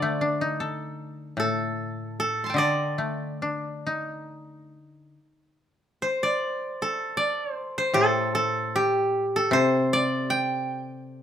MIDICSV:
0, 0, Header, 1, 3, 480
1, 0, Start_track
1, 0, Tempo, 784314
1, 856, Time_signature, 4, 2, 24, 8
1, 1335, Tempo, 820793
1, 1815, Tempo, 874636
1, 2775, Tempo, 821918
1, 3735, Tempo, 789474
1, 6673, End_track
2, 0, Start_track
2, 0, Title_t, "Koto"
2, 0, Program_c, 0, 107
2, 0, Note_on_c, 0, 72, 83
2, 0, Note_on_c, 0, 74, 76
2, 468, Note_off_c, 0, 72, 0
2, 854, Note_on_c, 0, 69, 78
2, 867, Note_off_c, 0, 74, 0
2, 1342, Note_off_c, 0, 69, 0
2, 1344, Note_on_c, 0, 69, 75
2, 1486, Note_on_c, 0, 84, 39
2, 1500, Note_on_c, 0, 81, 45
2, 1519, Note_on_c, 0, 79, 44
2, 1558, Note_on_c, 0, 75, 57
2, 1569, Note_on_c, 0, 74, 87
2, 2127, Note_off_c, 0, 84, 0
2, 2208, Note_off_c, 0, 81, 0
2, 2276, Note_off_c, 0, 79, 0
2, 2418, Note_off_c, 0, 69, 0
2, 2423, Note_off_c, 0, 75, 0
2, 2520, Note_off_c, 0, 74, 0
2, 3517, Note_on_c, 0, 72, 75
2, 3638, Note_on_c, 0, 74, 83
2, 3994, Note_on_c, 0, 69, 69
2, 4204, Note_off_c, 0, 74, 0
2, 4206, Note_on_c, 0, 74, 88
2, 4419, Note_off_c, 0, 72, 0
2, 4419, Note_off_c, 0, 74, 0
2, 4419, Note_on_c, 0, 72, 88
2, 4576, Note_off_c, 0, 72, 0
2, 4576, Note_on_c, 0, 72, 87
2, 4673, Note_off_c, 0, 69, 0
2, 4675, Note_on_c, 0, 69, 100
2, 4920, Note_off_c, 0, 69, 0
2, 4922, Note_on_c, 0, 69, 82
2, 5170, Note_on_c, 0, 67, 86
2, 5535, Note_off_c, 0, 69, 0
2, 5538, Note_on_c, 0, 69, 90
2, 5619, Note_off_c, 0, 72, 0
2, 5642, Note_on_c, 0, 72, 100
2, 5885, Note_on_c, 0, 74, 96
2, 6110, Note_on_c, 0, 79, 98
2, 6410, Note_off_c, 0, 67, 0
2, 6673, Note_off_c, 0, 69, 0
2, 6673, Note_off_c, 0, 72, 0
2, 6673, Note_off_c, 0, 74, 0
2, 6673, Note_off_c, 0, 79, 0
2, 6673, End_track
3, 0, Start_track
3, 0, Title_t, "Koto"
3, 0, Program_c, 1, 107
3, 0, Note_on_c, 1, 50, 59
3, 14, Note_on_c, 1, 57, 45
3, 130, Note_on_c, 1, 62, 42
3, 253, Note_on_c, 1, 63, 44
3, 368, Note_on_c, 1, 69, 40
3, 837, Note_on_c, 1, 45, 52
3, 975, Note_off_c, 1, 57, 0
3, 1093, Note_off_c, 1, 62, 0
3, 1214, Note_off_c, 1, 63, 0
3, 1329, Note_off_c, 1, 50, 0
3, 1331, Note_off_c, 1, 69, 0
3, 1545, Note_on_c, 1, 50, 52
3, 1560, Note_off_c, 1, 45, 0
3, 1803, Note_on_c, 1, 57, 37
3, 2045, Note_on_c, 1, 62, 40
3, 2289, Note_on_c, 1, 63, 35
3, 2769, Note_off_c, 1, 57, 0
3, 3004, Note_off_c, 1, 50, 0
3, 3011, Note_off_c, 1, 62, 0
3, 3253, Note_off_c, 1, 63, 0
3, 4672, Note_on_c, 1, 45, 55
3, 5629, Note_on_c, 1, 48, 65
3, 5636, Note_off_c, 1, 45, 0
3, 6673, Note_off_c, 1, 48, 0
3, 6673, End_track
0, 0, End_of_file